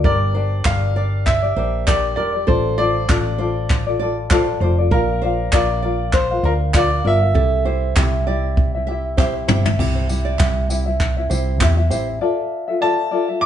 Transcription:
0.04 fingered electric bass G1, ukulele D4 G4 A#4 D5, nylon-string guitar A#4, upright piano D5, kick
0.34 ukulele D4 G4 A#4 D5, nylon-string guitar C5
0.65 fingered electric bass G1, ukulele D4 G4 A#4 D5, upright piano F5, kick, clap
0.95 ukulele D4 G4 A#4 D5, nylon-string guitar D5
1.26 upright piano E5, kick, clap
1.42 ukulele D4 G4 D5
1.56 fingered electric bass A#1, ukulele D4 G4 A#4 D5, nylon-string guitar C5
1.87 ukulele D4 G4 A#4 D5, upright piano D5, kick, clap
2.16 fingered electric bass E1, ukulele D4 G4 A#4 D5, nylon-string guitar A#4, upright piano D5
2.34 ukulele D4 G4 D5
2.47 fingered electric bass A1, ukulele F4 A4 C5 D5, nylon-string guitar A4, upright piano C5, kick
2.78 ukulele F4 A4 C5 D5, nylon-string guitar C5, upright piano D5
3.08 fingered electric bass A1, ukulele F4 A4 C5 D5, kick, clap
3.38 ukulele F4 A4 C5 D5, nylon-string guitar C5
3.70 kick, clap
3.86 ukulele F4 A4 D5
3.99 ukulele F4 A4 C5 D5, nylon-string guitar D5
4.30 ukulele F4 A4 C5 D5, nylon-string guitar C5, kick, clap
4.60 fingered electric bass F1, ukulele F4 A4 C5 D5, nylon-string guitar C5
4.78 ukulele F4 A4 D5
4.91 fingered electric bass A#1, ukulele F4 A#4 D5 F5, nylon-string guitar A#4, upright piano A#4, kick
5.22 ukulele F4 A#4 D5 F5, nylon-string guitar C5
5.52 fingered electric bass A#1, ukulele F4 A#4 D5 F5, upright piano D5, kick, clap
5.82 ukulele F4 A#4 D5 F5, nylon-string guitar D5
6.13 upright piano C5, kick, clap
6.31 ukulele F4 A#4 F5
6.43 fingered electric bass D2, ukulele F4 A#4 D5 F5, upright piano A#4, nylon-string guitar C5
6.74 ukulele F4 A#4 D5 F5, upright piano D5, kick, clap
7.04 fingered electric bass G1, ukulele F4 A#4 D5 F5, nylon-string guitar A#4, upright piano E5
7.21 ukulele F4 A#4 F5
7.35 fingered electric bass C2, ukulele C4 E4 G4 E5, nylon-string guitar A4, kick
7.65 ukulele C4 E4 G4 E5, nylon-string guitar C5
7.96 fingered electric bass C2, ukulele C4 E4 G4 E5, kick, clap
8.27 ukulele C4 E4 G4 E5, nylon-string guitar D5
8.57 kick
8.74 ukulele C4 E4 E5
8.87 ukulele C4 E4 G4, nylon-string guitar E5
8.91 ukulele E5
9.17 ukulele C4 E4 G4 E5, nylon-string guitar C5, kick, snare, clap
9.48 fingered electric bass G1, ukulele C4 E4 G4 E5, nylon-string guitar C5, mid tom
9.66 ukulele C4 E4 E5, floor tom
9.79 fingered electric bass C2, ukulele C4 E4 G4 E5, kick, crash
9.95 nylon-string guitar C5
10.09 ukulele C4 E4 G4 E5, tambourine
10.25 nylon-string guitar D5
10.38 fingered electric bass C2, ukulele C4 E4 G4 E5, nylon-string guitar E5, kick, clap
10.69 ukulele C4 E4 G4 E5, nylon-string guitar D5, tambourine
10.86 ukulele C4 E4 E5
11.00 kick, clap
11.17 ukulele C4 E4 E5
11.30 fingered electric bass C2, ukulele C4 E4 G4 E5, nylon-string guitar C5, tambourine
11.60 fingered electric bass E2, ukulele C4 E4 G4 E5, kick, clap
11.77 ukulele C4 E4 E5
11.90 fingered electric bass A1, ukulele C4 E4 G4 E5, nylon-string guitar C5, tambourine
12.21 ukulele F4 A4 D5 E5
12.68 ukulele F4 A4 E5
12.81 ukulele F4 A4 D5 E5, upright piano A5
13.11 ukulele F4 A4 D5 E5
13.28 ukulele F4 A4 E5
13.41 upright piano D6

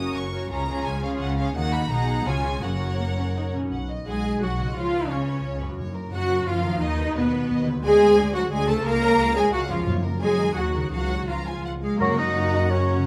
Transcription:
Already playing: double bass section F#1, cello section F#2, harp F#2 A#3 A#4 C#5, viola section C#4 F#4, violin section A#4 C#5 D#6
0.15 double bass section F#1, cello section F#2, harp F#5, violin section C#6
0.32 viola section C#4 F#4, violin section A#4 C#5, harp A#4
0.50 double bass section C#2, harp C#3, cello section C#3, viola section C#4 F4, violin section G#4 C#5 A#5
0.68 harp G#3, viola section C#4 F4, violin section G#4 C#5
0.86 double bass section C#2, cello section C#3, harp C#5, violin section G#5
1.03 viola section C#4 F4, violin section G#4 C#5 F5, harp G#4
1.21 double bass section C#2, cello section C#3, harp F5, violin section F#5
1.38 viola section C#4 F4, harp G#4, violin section G#4 C#5 F5
1.55 double bass section D#2, cello section D#3, harp D#3, viola section A#3 D#4, violin section F#4 F#5
1.73 harp F#4 A#4, violin section B5
1.90 double bass section B1, cello section B2, harp B2, viola section G#3 D#4, violin section G#4 F#5 A#5
2.08 harp F#4 G#4
2.26 double bass section C#2, cello section C#3, harp C#3, viola section C#4 F4, violin section G#4 C#5 G#5
2.44 harp F4 G#4
2.62 double bass section F#1, harp F#2, cello section F#2, viola section C#4 F#4, violin section A#4 C#5 F#5
2.81 harp C#4
2.99 viola section A#3, harp A#4
3.17 viola section C#4, harp C#5
3.35 viola section D#4, harp F#5
3.53 harp B2 C#5, viola section C#4
3.58 harp D#4
3.63 harp F#4
3.67 harp B4
3.72 double bass section B1, violin section F#5
3.90 violin section D#5
4.07 double bass section B1, cello section G#3, viola section G#4, violin section F#5 G#5
4.25 violin section D#5
4.42 double bass section B1, cello section F#3, viola section F#4, violin section F#5
4.59 harp C#3, violin section D#5
4.63 harp C#4
4.68 harp F4
4.72 cello section F3, harp B4
4.76 double bass section C#2, viola section F4, violin section C#5 F5
4.94 violin section B4
5.10 double bass section C#2, cello section C#3, viola section C#4, violin section C#5
5.28 violin section B4
5.45 double bass section C#2, violin section C#5
5.61 harp F#2, violin section B4
5.65 harp C#4
5.70 harp F#4
5.74 harp A#4, violin section C#5
5.79 timpani F#2, double bass section F#2
5.95 violin section A#4
6.13 double bass section F#2, cello section F#3, viola section F#4, violin section C#5 F#5
6.30 violin section A#4
6.47 double bass section F#2, cello section F3, viola section F4, violin section C#5 F5
6.64 harp D#3, violin section A#4
6.68 harp D#4
6.73 harp F#4
6.77 harp B4, violin section D#5
6.82 double bass section D#2, cello section D#3, viola section D#4, violin section D#5
6.99 violin section B4
7.16 double bass section D#2, cello section B2, viola section B3, violin section B4 D#5
7.33 violin section B4
7.50 double bass section D#2, violin section D#5
7.66 harp D3, violin section B4
7.70 harp C4
7.75 harp F#4
7.79 harp C5
7.84 double bass section D2, cello section G#3, viola section G#4, violin section D5 G#5
8.01 violin section C5
8.18 double bass section D2, violin section D5
8.34 cello section F#3, viola section F#4, violin section C5 F#5
8.51 double bass section D2, cello section G#3, viola section G#4, violin section D5 G#5
8.67 harp C#3, cello section A3, viola section A4, violin section C5 A5
8.72 harp C#4
8.76 harp F4
8.81 harp G#4
8.85 double bass section C#2, cello section A#3, viola section A#4, violin section F5 A#5
9.02 violin section C#5
9.19 double bass section C#2, violin section F5
9.36 cello section G#3, viola section G#4, violin section C#5 G#5
9.53 double bass section C#2, cello section F#3, viola section F#4, violin section F5 F#5
9.68 harp F#2, cello section F3, viola section F4, violin section C#5 F5
9.73 harp C#4
9.77 harp F#4
9.82 harp A#4
9.86 double bass section F#2, timpani F#2, violin section C#5
10.04 violin section A#4
10.21 double bass section F#2, cello section G#3, viola section G#4, violin section C#5 G#5
10.38 harp D#3, violin section A#4
10.43 harp D#4
10.47 harp F#4
10.52 harp A#4
10.56 double bass section D#2, cello section F#3, violin section F#4 F#5, viola section F#4
10.74 harp C#3, violin section A#4
10.79 harp G#3
10.83 harp G#4
10.88 harp C#5
10.92 double bass section C#2, timpani C#3, cello section F#3, viola section F#4, violin section F5 F#5
11.11 violin section C#5
11.28 double bass section C#2, cello section F3, viola section F4, violin section F5 A#5
11.47 violin section G#5
11.64 double bass section C#2, violin section F#5
11.83 cello section G#3, clarinet G#4, violin section F5
12.00 timpani F#2, double bass section F#2, harp F#2, bassoon F#3, cello section A#3, french horn section A#3 F#4, viola section F#4, clarinet A#4, violin section F#5 A#5, oboe A#5, flute C#6
12.10 harp C#3
12.18 harp A#3, cello section D#4, clarinet D#5
12.28 harp F#4
12.37 harp C#5
12.45 harp A#4
12.54 harp F#5
12.63 harp C#6
12.71 cello section C#4, harp A#4, clarinet C#5
12.80 harp C#5
12.90 harp F#4
12.98 harp C#3

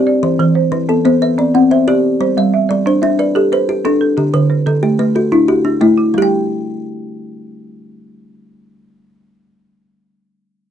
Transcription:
Already playing: marimba G4 E5, kalimba G4 C5 D5
0.07 marimba D5
0.23 kalimba E3, marimba C5
0.39 marimba E3, kalimba C5
0.55 marimba C5
0.72 kalimba E3, marimba B4
0.89 marimba B3, kalimba A4
1.05 kalimba B3, marimba C5
1.22 marimba B4, kalimba E5
1.38 marimba C4, kalimba D5
1.54 kalimba C4, marimba F#5
1.71 kalimba C5, marimba E5
1.88 kalimba G4 D5, marimba G4
2.21 kalimba G3, marimba C5
2.37 marimba G3, kalimba E5
2.54 marimba E5
2.69 kalimba G3, marimba D5
2.86 marimba D4, kalimba C5
3.02 kalimba D4, marimba E5
3.19 kalimba B4, marimba D5
3.35 marimba G4, kalimba A4
3.52 kalimba B4, marimba C5
3.69 kalimba G4
3.85 marimba D4, kalimba D4 A4
4.01 marimba A4
4.17 kalimba D3, marimba G4
4.34 marimba D3, kalimba B4
4.50 marimba B4
4.66 kalimba D3, marimba A4
4.83 marimba A3, kalimba G4
4.99 kalimba A3, marimba B4
5.15 kalimba F#4, marimba A4
5.32 marimba D4, kalimba E4
5.48 kalimba F#4, marimba G4
5.65 kalimba D4, marimba F#4
5.81 marimba A3, kalimba A3 E4
5.98 marimba E4
6.14 kalimba G3, marimba G3 G4
6.18 kalimba G4
6.22 marimba G5, kalimba G5

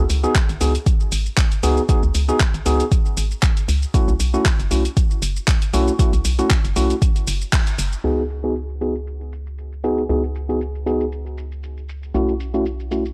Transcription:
0.10 fm bass C#2, open hi-hat, shaker
0.23 tine electric piano B3 D#4 F#4 G#4, shaker
0.35 kick, clap, closed hi-hat, shaker
0.49 fm bass G#1, closed hi-hat, shaker
0.61 fm bass C#2, tine electric piano B3 D#4 F#4 G#4, open hi-hat, shaker
0.75 closed hi-hat, shaker
0.86 kick, closed hi-hat, shaker
1.00 shaker
1.12 fm bass G#1, open hi-hat, shaker
1.26 shaker
1.37 kick, clap, closed hi-hat, shaker
1.52 closed hi-hat, shaker
1.63 fm bass C#2, tine electric piano B3 D#4 F#4 G#4, open hi-hat, shaker
1.77 shaker
1.89 tine electric piano B3 D#4 F#4 G#4, kick, closed hi-hat, shaker
2.03 fm bass C#2, shaker
2.15 fm bass C#2, open hi-hat, shaker
2.29 tine electric piano B3 D#4 F#4 G#4, shaker
2.40 kick, clap, closed hi-hat, shaker
2.54 fm bass G#1, closed hi-hat, shaker
2.66 fm bass C#2, tine electric piano B3 D#4 F#4 G#4, open hi-hat, shaker
2.80 closed hi-hat, shaker
2.92 kick, closed hi-hat, shaker
3.06 shaker
3.17 fm bass G#1, open hi-hat, shaker
3.31 shaker
3.43 kick, clap, closed hi-hat, shaker
3.57 closed hi-hat, shaker
3.68 fm bass C#2, open hi-hat, shaker
3.82 shaker
3.94 tine electric piano A3 C#4 E4 F#4, kick, closed hi-hat, shaker
4.08 fm bass B1, shaker
4.20 fm bass B1, open hi-hat, shaker
4.34 tine electric piano A3 C#4 E4 F#4, shaker
4.45 kick, clap, closed hi-hat, shaker
4.59 fm bass F#1, closed hi-hat, shaker
4.71 fm bass B1, tine electric piano A3 C#4 E4 F#4, open hi-hat, shaker
4.85 closed hi-hat, shaker
4.97 kick, closed hi-hat, shaker
5.11 shaker
5.22 fm bass F#1, open hi-hat, shaker
5.36 shaker
5.48 kick, clap, closed hi-hat, shaker
5.62 closed hi-hat, shaker
5.74 fm bass B1, tine electric piano A3 C#4 E4 F#4, open hi-hat, shaker
5.88 shaker
5.99 tine electric piano A3 C#4 E4 F#4, kick, closed hi-hat, shaker
6.13 fm bass B1, closed hi-hat, shaker
6.25 fm bass B1, open hi-hat, shaker
6.39 tine electric piano A3 C#4 E4 F#4, closed hi-hat, shaker
6.50 kick, clap, closed hi-hat, shaker
6.64 fm bass F#1, closed hi-hat, shaker
6.76 fm bass B1, tine electric piano A3 C#4 E4 F#4, open hi-hat, shaker
6.90 closed hi-hat, shaker
7.02 kick, closed hi-hat, shaker
7.16 closed hi-hat, shaker
7.27 fm bass F#1, open hi-hat, shaker
7.41 shaker
7.53 kick, clap, closed hi-hat, shaker
7.67 closed hi-hat, shaker
7.79 fm bass F#1, open hi-hat, shaker
7.93 shaker
8.04 fm bass C#2, tine electric piano B3 D#4 F#4 G#4, shaker
8.18 shaker
8.30 shaker
8.44 tine electric piano B3 D#4 F#4 G#4, shaker
8.56 shaker
8.70 shaker
8.81 tine electric piano B3 D#4 F#4 G#4, shaker
8.95 shaker
9.07 shaker
9.21 shaker
9.33 shaker
9.47 shaker
9.58 shaker
9.72 shaker
9.84 tine electric piano B3 D#4 F#4 G#4, shaker
9.98 shaker
10.09 fm bass C#2, tine electric piano B3 D#4 F#4 G#4, shaker
10.24 shaker
10.35 shaker
10.49 tine electric piano B3 D#4 F#4 G#4, shaker
10.61 shaker
10.75 shaker
10.86 tine electric piano B3 D#4 F#4 G#4, shaker
11.00 shaker
11.12 shaker
11.26 shaker
11.38 shaker
11.52 shaker
11.63 shaker
11.77 shaker
11.89 shaker
12.03 shaker
12.14 fm bass B1, tine electric piano A3 C#4 E4 F#4, shaker
12.28 shaker
12.40 shaker
12.54 tine electric piano A3 C#4 E4 F#4, shaker
12.66 shaker
12.80 shaker
12.91 tine electric piano A3 C#4 E4 F#4, shaker
13.06 shaker

